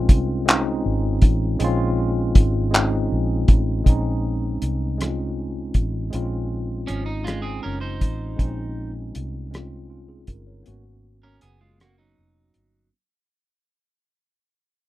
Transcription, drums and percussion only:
0.09 kick medium
0.09 closed hi-hat medium
0.48 clap loud
0.48 closed hi-hat medium
1.22 kick medium
1.22 closed hi-hat medium
1.60 closed hi-hat medium
2.35 kick loud
2.35 closed hi-hat medium
2.74 clap loud
2.74 closed hi-hat medium
3.48 kick medium
3.48 closed hi-hat medium
3.86 kick medium
3.86 closed hi-hat medium
4.62 closed hi-hat medium
5.01 cross-stick medium
5.01 closed hi-hat medium
5.74 kick medium
5.74 closed hi-hat medium
6.13 closed hi-hat medium
6.88 closed hi-hat medium
7.27 cross-stick medium
7.27 closed hi-hat medium
8.01 kick medium
8.01 closed hi-hat medium
8.39 kick medium
8.39 closed hi-hat medium
9.15 closed hi-hat medium
9.54 cross-stick medium
9.54 closed hi-hat medium
10.27 kick medium
10.27 closed hi-hat medium
10.66 closed hi-hat medium
11.41 closed hi-hat medium
11.80 cross-stick medium
11.80 closed hi-hat medium
12.54 closed hi-hat medium

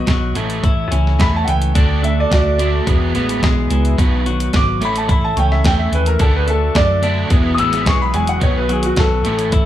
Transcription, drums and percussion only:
0.07 kick medium
0.07 snare medium
0.07 closed hi-hat medium
0.35 closed hi-hat medium
0.50 closed hi-hat medium
0.64 kick loud
0.64 closed hi-hat medium
0.92 closed hi-hat medium
1.07 snare soft
1.20 kick loud
1.20 snare medium
1.20 closed hi-hat medium
1.48 closed hi-hat medium
1.62 closed hi-hat medium
1.75 kick medium
1.75 closed hi-hat medium
2.04 closed hi-hat medium
2.31 kick medium
2.31 snare medium
2.31 closed hi-hat medium
2.59 closed hi-hat medium
2.87 kick medium
2.87 closed hi-hat medium
3.15 closed hi-hat medium
3.29 closed hi-hat medium
3.43 kick loud
3.43 snare loud
3.43 closed hi-hat medium
3.70 closed hi-hat medium
3.85 closed hi-hat medium
3.98 kick loud
3.98 closed hi-hat medium
4.26 closed hi-hat medium
4.40 closed hi-hat medium
4.53 kick loud
4.53 snare medium
4.53 closed hi-hat medium
4.82 closed hi-hat medium
4.96 closed hi-hat medium
5.09 kick loud
5.09 closed hi-hat medium
5.37 closed hi-hat medium
5.52 snare soft
5.64 kick loud
5.64 snare loud
5.64 closed hi-hat medium
5.93 closed hi-hat medium
6.06 closed hi-hat medium
6.19 kick loud
6.19 closed hi-hat medium
6.48 closed hi-hat medium
6.75 kick loud
6.75 snare loud
6.75 closed hi-hat medium
7.03 closed hi-hat medium
7.30 kick loud
7.30 closed hi-hat medium
7.58 closed hi-hat medium
7.73 snare soft
7.73 closed hi-hat medium
7.86 kick loud
7.86 snare loud
7.86 closed hi-hat medium
8.14 closed hi-hat medium
8.27 closed hi-hat medium
8.41 kick loud
8.41 closed hi-hat medium
8.69 closed hi-hat medium
8.83 closed hi-hat medium
8.96 kick loud
8.96 snare loud
8.96 closed hi-hat medium
9.25 closed hi-hat medium
9.39 closed hi-hat medium
9.52 kick loud
9.52 closed hi-hat medium

